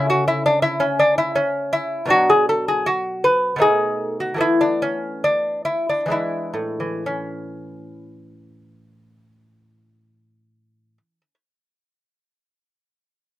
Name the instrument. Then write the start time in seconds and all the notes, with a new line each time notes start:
lute
Already playing: C#3 A3 C#4
0.10 F#4
0.28 E4
0.46 D4
0.62 E4
0.80 C#4
0.99 D4
1.18 E4
1.36 C#4
1.73 E4
2.06 B2 F#3 D4
2.10 F#4
2.30 G#4
2.49 A4
2.68 G#4
2.86 F#4
3.24 B4
3.56 B2 A3 D#4
3.62 G#4
4.20 F#4
4.34 E3 A3 B3
4.40 E4
4.61 D4
4.82 C#4
5.24 D4
5.65 E4
5.89 D4
6.06 E3 G#3
6.10 D4 E4
6.54 A2
6.80 E3
7.06 C#4